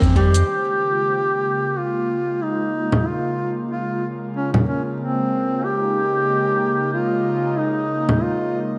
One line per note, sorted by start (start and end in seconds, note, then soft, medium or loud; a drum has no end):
0.00 0.43 F2 medium
0.00 0.44 D#3 medium
0.00 0.44 G3 medium
0.00 0.16 C4 medium
0.00 0.44 G4 medium
0.00 0.44 C5 medium
0.00 kick loud
0.00 shaker soft
0.16 0.34 G3 medium
0.16 1.79 G4 loud
0.16 kick medium
0.34 closed hi-hat soft
0.34 shaker medium
0.48 8.79 C#3 medium
0.48 8.79 G#3 medium
0.48 8.79 A#3 medium
0.48 5.60 F4 medium
1.78 2.44 F4 medium
2.42 3.09 D#4 medium
2.92 low conga medium
3.07 3.55 F4 medium
3.72 4.07 F4 medium
4.36 4.51 C#4 medium
4.54 low conga medium
4.68 4.83 C#4 medium
5.01 5.66 C4 medium
5.64 8.79 D#4 medium
5.64 6.93 G4 loud
6.94 7.60 F4 medium
7.58 8.24 D#4 medium
8.09 low conga medium
8.23 8.61 F4 loud